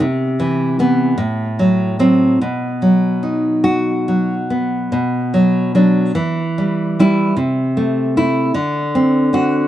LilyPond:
\new Staff \with { instrumentName = "Nylon-string guitar" } { \clef bass \time 6/8 \key b \phrygian \tempo 4. = 50 << { r4 b8 r4 c'8 | r4. fis'4 r8 | r4 d'8 r4 e'8 | r4 e'8 r4 fis'8 | } \\ { c8 e8 e8 a,8 fis8 fis8 | b,8 fis8 dis'4 fis8 b8 | b,8 fis8 fis8 e8 g8 g8 | c8 a8 a8 d8 c'8 c'8 | } >> }